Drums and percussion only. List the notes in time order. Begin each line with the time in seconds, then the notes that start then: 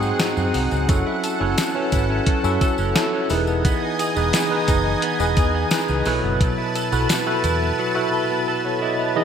0.03 tambourine
0.19 snare, closed hi-hat, tambourine
0.37 tambourine
0.54 open hi-hat, tambourine
0.71 tambourine
0.89 kick, closed hi-hat, tambourine
1.24 closed hi-hat, tambourine
1.58 snare, closed hi-hat, tambourine
1.92 kick, closed hi-hat, tambourine
2.26 kick, closed hi-hat
2.44 tambourine
2.61 kick, closed hi-hat, tambourine
2.78 tambourine
2.95 snare, closed hi-hat, tambourine
3.30 open hi-hat, tambourine
3.47 tambourine
3.65 kick, closed hi-hat, tambourine
3.99 closed hi-hat, tambourine
4.16 tambourine
4.33 snare, closed hi-hat, tambourine
4.68 kick, closed hi-hat, tambourine
5.02 closed hi-hat
5.20 tambourine
5.37 kick, closed hi-hat, tambourine
5.71 snare, closed hi-hat, tambourine
5.88 tambourine
6.05 open hi-hat, tambourine
6.40 kick, closed hi-hat, tambourine
6.75 closed hi-hat, tambourine
6.92 tambourine
7.09 snare, closed hi-hat, tambourine
7.44 closed hi-hat, tambourine